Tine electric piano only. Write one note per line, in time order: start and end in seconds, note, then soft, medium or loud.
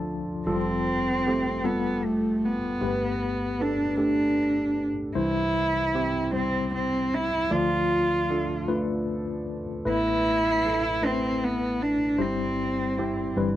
0.00 0.44 D2 medium
0.00 0.44 D3 soft
0.00 0.50 F3 medium
0.00 0.50 D4 medium
0.00 0.47 A4 medium
0.00 0.43 A5 medium
0.47 2.77 F1 soft
0.47 2.77 F2 soft
0.47 1.41 G3 medium
0.47 1.41 F4 medium
0.47 1.41 A4 medium
1.64 2.58 G3 medium
1.64 2.58 F4 soft
1.64 2.58 A4 medium
2.81 5.12 G1 medium
2.81 5.12 G2 soft
2.81 3.75 A3 medium
2.81 3.75 G4 medium
2.81 3.75 B4 medium
3.97 4.92 A3 soft
3.97 4.92 G4 soft
3.97 4.92 A4 medium
5.15 7.47 C2 soft
5.15 7.47 C3 soft
5.15 6.09 G3 medium
5.15 6.10 E4 medium
5.15 6.09 C5 medium
6.33 7.27 G3 soft
6.33 7.27 E4 soft
6.33 7.27 C5 medium
7.50 9.81 D2 soft
7.50 9.81 D3 soft
7.50 8.45 A3 medium
7.50 8.44 F4 medium
7.50 8.45 D5 medium
8.68 9.62 A3 medium
8.68 9.62 F4 medium
8.68 9.62 B4 medium
9.85 12.15 A1 medium
9.85 12.15 A2 soft
9.85 10.79 A3 medium
9.85 10.79 E4 medium
9.85 10.79 B4 medium
11.02 11.95 A3 medium
11.02 11.96 E4 soft
11.02 11.96 B4 medium
12.18 13.32 G1 medium
12.18 13.32 G2 medium
12.18 13.12 G3 medium
12.18 13.12 E4 medium
12.18 13.12 C5 medium
13.37 13.56 G1 medium
13.37 13.56 G2 medium
13.37 13.56 G3 medium
13.37 13.56 E4 medium
13.37 13.56 B4 medium